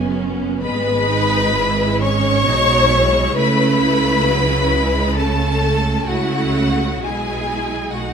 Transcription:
Already playing: F#1 F#2 B3 C#4 G#4 G#5
0.62 G#1 G#2 G#3 B3 B4 B5
1.10 D#4
1.56 G#3 E4
2.02 C#4 C#5 C#6
2.46 B1 B2 G#3 D#4
2.93 E4
3.37 C#2 C#3 A3 E4 B4 B5
3.84 A3
4.29 F#3
4.75 G#3
5.18 A3 C#4 A4 A5
6.07 C#2 C#3 A3 E4 F#4 F#5
7.02 B1 B2 G#3 E4 G#4 G#5
7.95 B1 B2 A3 D#4 F#4 F#5

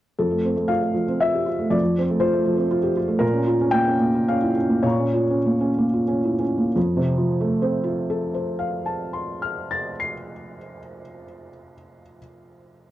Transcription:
0.19 F2 A4
0.31 A3
0.45 C4
0.56 A3
0.68 F4 F5
0.81 A3
0.94 F3
1.08 C4
1.20 F4 E5
1.34 G4
1.46 F4
1.59 A3
1.70 F2 D5
1.83 F3
1.98 C4
2.10 A3
2.20 F4 C5
2.33 A3
2.46 F3
2.57 C4
2.71 F4
2.83 G4
2.97 F4
3.08 A3
3.19 A#2 A#4
3.33 C#4
3.47 F4
3.61 C#4
3.71 A#3 G5
3.87 C#4
3.99 A#3
4.14 F4
4.28 C#4 F5
4.42 E4
4.57 C#4
4.69 A#3
4.83 A#2 C#5 F5 A#5
4.90 C#6
4.99 C#4
5.14 F4
5.30 C#4
5.46 A#3
5.61 C#4
5.78 A#3
5.93 F4
6.08 C#4
6.25 E4
6.39 C#4
6.58 A#3
6.76 F2
6.97 C3
7.18 F3
7.41 A3
7.62 C4
7.84 F4
8.10 A4
8.34 C5
8.59 F5
8.86 A5
9.13 C6
9.42 F6
9.71 A6
10.00 C7

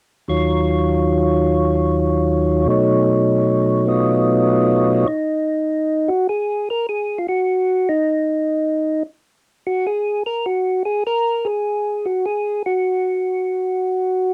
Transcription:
0.28 D#2 D#3 F#3 F4 C#5
2.65 B2 F#3 A3 D#4
2.70 C#5
3.85 A3 B3 F4 D#5
5.08 D#4
6.08 F#4
6.29 G#4
6.70 A#4
6.89 G#4
7.18 F4
7.29 F#4
7.89 D#4
9.67 F#4
9.87 G#4
10.26 A#4
10.46 F#4
10.85 G#4
11.07 A#4
11.45 G#4
12.06 F#4
12.26 G#4
12.66 F#4

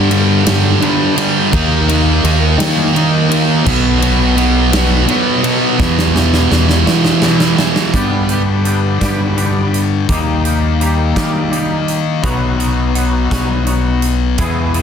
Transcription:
Already playing: G2 D3 G3 B3
0.10 G2 D3 G3, ride
0.44 G2 D3 G3, snare, ride
0.81 G2 D3 G3, ride
1.17 G2 D3 G3, ride
1.52 D#2 D#3 A#3 D#4, kick, ride
1.88 D#3 A#3 D#4, ride
2.24 D#2 D#3 A#3 D#4, ride
2.58 D#3 A#3 D#4, snare, ride
2.96 D#3 A#3 D#4, ride
3.30 D#3 A#3 D#4, ride
3.67 B1 B2 F#3 B3, kick, crash
4.02 B2 F#3 B3, ride
4.36 B2 F#3 B3, ride
4.72 B2 F#3 B3, snare, ride
5.08 B2 F#3 B3, ride
5.42 B2 F#3 B3, ride
5.78 E2 B2 E3, kick, snare
5.99 snare
6.14 E2 B2 E3, snare
6.34 snare
6.51 E2 B2 E3, snare
6.69 snare
6.87 E2 B2 E3, snare
7.05 snare
7.22 E2 B2 E3, snare
7.40 snare
7.57 E2 B2 E3, snare
7.76 snare
7.93 G2 D3 G3 B3 D4 G4, kick, closed hi-hat
8.29 G3 B3 D4 G4, closed hi-hat
8.64 G3 B3 D4 G4, closed hi-hat
9.01 G2 G3 B3 D4 G4, kick, snare, closed hi-hat
9.37 G3 B3 D4 G4, closed hi-hat
9.74 closed hi-hat
10.09 D#2 D#3 G3 A#3 D#4 G4, kick, closed hi-hat
10.44 G3 A#3 D#4 G4, closed hi-hat
10.80 G3 A#3 D#4 G4, closed hi-hat
11.16 D#3 G3 A#3 D#4 G4, kick, snare, closed hi-hat
11.50 G3 A#3 D#4 G4, closed hi-hat
11.88 closed hi-hat
12.23 B1 B2 F#3 B3 D#4 F#4, kick, closed hi-hat
12.57 F#3 B3 D#4 F#4, closed hi-hat
12.94 F#3 B3 D#4 F#4, closed hi-hat
13.31 B1 F#3 B3 D#4 F#4, kick, snare, closed hi-hat
13.66 F#3 B3 D#4 F#4, closed hi-hat
14.02 closed hi-hat
14.38 E2 B2 E3 B3 E4 G#4, kick, closed hi-hat
14.42 E3
14.74 E3 B3 E4 G#4, closed hi-hat

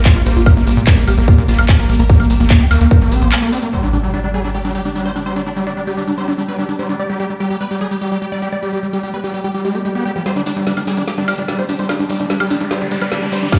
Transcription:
Already playing: G3 G4
0.05 A#3 F4, kick, clap, closed hi-hat, shaker
0.16 A#1 A#3 F4, closed hi-hat
0.26 A#1 A#3 C5, open hi-hat, shaker
0.36 A#1 A#3 F4, closed hi-hat, shaker
0.46 A#3 A#4, kick, closed hi-hat, high woodblock, shaker
0.56 A#1 A#3, closed hi-hat
0.67 A#1 A#3, open hi-hat, shaker
0.77 A#2 A#3, closed hi-hat, shaker
0.87 A#3, kick, clap, closed hi-hat, shaker
0.97 A#1 A#3, closed hi-hat, shaker
1.08 A#1 A#3 G4, open hi-hat, high woodblock, shaker
1.18 A#1 A#3, closed hi-hat, shaker
1.28 A#3 F4, kick, closed hi-hat, shaker
1.38 A#2 A#3, closed hi-hat, shaker
1.48 A#1 A#3 F4, open hi-hat, shaker
1.58 A#1 A#3, closed hi-hat, high woodblock, shaker
1.69 A#3, kick, clap, closed hi-hat, shaker
1.79 A#1 A#3 A#4, closed hi-hat
1.89 A#1 A#3, open hi-hat, shaker
1.99 A#1 A#3 A#4, closed hi-hat, shaker
2.09 A#3, kick, closed hi-hat, shaker
2.20 A#1 A#3, closed hi-hat, high woodblock
2.30 A#1 A#3, open hi-hat, shaker
2.40 A#1 A#3, closed hi-hat, shaker
2.50 A#3, kick, clap, closed hi-hat, shaker
2.61 D2 A#3 G4, closed hi-hat, shaker
2.71 D2 A#3, open hi-hat, high woodblock, shaker
2.81 D2 A#3, closed hi-hat, shaker
2.91 A#3 A#4, kick, closed hi-hat, shaker
3.01 A#1 A#3, closed hi-hat, shaker
3.12 A#1 A#3 C4, open hi-hat, shaker
3.21 A#1 A#3 C5, closed hi-hat, shaker
3.32 A#3, clap, closed hi-hat, high woodblock, shaker
3.42 A#3, closed hi-hat
3.52 C4 D5, open hi-hat, shaker
3.63 A#3, closed hi-hat, shaker
3.72 G3 G4 C5, impact, shaker
3.83 G3 D4
3.93 G3 D4, shaker
4.03 G3, shaker
4.14 G3 D4, shaker
4.24 G3 D4, shaker
4.34 G3 G#4, shaker
4.44 G3 D4, shaker
4.54 G3 G4, shaker
4.64 G3 D4, shaker
4.75 G3 G4, shaker
4.85 G3 D4, shaker
4.95 G3 D4, shaker
5.05 G3 C5
5.16 G3 D4, shaker
5.26 G3 C5, shaker
5.36 G3 D4, shaker
5.46 G3 D4
5.56 G3, shaker
5.67 G3 D4, shaker
5.77 G3 D4, shaker
5.87 G3 G4, shaker
5.97 G3 D4, shaker
6.08 G3 D4, shaker
6.18 G3 C5, shaker
6.27 G3 D4, shaker
6.38 G3 D4, shaker
6.48 G3 B4, shaker
6.59 G3 D4, shaker
6.69 G3 D4
6.79 G3 C5, shaker
6.89 G3 D4, shaker
6.99 G3 D5, shaker
7.10 G3 G4
7.20 G3 G4, shaker
7.29 G3, shaker
7.40 G3 G4, shaker
7.50 G3 G4, shaker
7.61 G3 B4, shaker
7.71 G3 G4, shaker
7.81 G3 G#4, shaker
7.91 G3 G4, shaker
8.01 G3 G4, shaker
8.12 G3 G4, shaker
8.21 G3 G4, shaker
8.32 G3 D5
8.42 G3 G4, shaker
8.52 G3 D5, shaker
8.62 G3 G4, shaker
8.73 G3 G4
8.83 G3, shaker
8.93 G3 G4, shaker
9.03 G3 G4, shaker
9.14 G3 B4, shaker
9.24 G3 G4, shaker
9.34 G3 G4, shaker
9.44 G3 G4, swell, shaker
9.54 G3 G4, shaker
9.65 G#3 G4, shaker
9.75 B3 G4, shaker
9.85 G#3 G4, shaker
9.95 B3 G4
10.05 G3 G4, shaker
10.15 F3 G4, shaker
10.26 G3 G4 C5, snare, closed hi-hat, riser
10.36 G1 G3 D4, closed hi-hat
10.46 G1 G3 D4, open hi-hat
10.56 G2 G3, closed hi-hat
10.67 G3 D4, snare, closed hi-hat
10.77 G1 G3 D4, closed hi-hat, high woodblock
10.87 G1 G3 G#4, open hi-hat
10.97 G1 G3 D4, closed hi-hat
11.08 G3 G4, snare, closed hi-hat
11.18 G2 G3 D4, closed hi-hat
11.28 G1 G3 G4, open hi-hat, high woodblock
11.38 G1 G3 D4, closed hi-hat
11.48 G3 D4, snare, closed hi-hat
11.59 G1 G3 C5, closed hi-hat
11.69 G1 G3 D4, open hi-hat
11.79 G1 G3 C5, closed hi-hat
11.89 G3 D4, snare, closed hi-hat, high woodblock
11.99 G1 G3 D4, closed hi-hat
12.10 G1 G3, open hi-hat
12.20 G1 G3 D4, closed hi-hat
12.30 G3 D4, snare, closed hi-hat
12.40 B1 G3 G4, closed hi-hat, high woodblock
12.50 B1 G3 D4, open hi-hat
12.61 B1 G3 D4, closed hi-hat
12.71 G3 C5, snare, closed hi-hat
12.81 G1 G3 D4, closed hi-hat
12.91 G1 G3 D4, open hi-hat
13.01 G1 G3 B4, closed hi-hat, high woodblock
13.12 G3 D4, snare, closed hi-hat
13.22 G1 G3 D4, closed hi-hat
13.32 G1 G3 C5, open hi-hat
13.42 G1 G3 D4, closed hi-hat
13.52 G3 D5, kick, snare, closed hi-hat, high woodblock

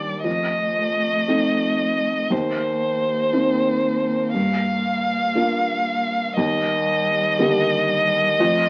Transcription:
Already playing: D#2 G3 A#3 D4 G4 D5
0.24 F2 A3 D#5
1.28 A3 C4 D#4
2.28 D#2 A#3 C5
3.33 A#3 C4 D#4
4.34 G2 F5
5.35 A#3 D4 F4
6.36 D#2 G3 D#5
7.39 D3 A#3 G4
8.38 F2 A3

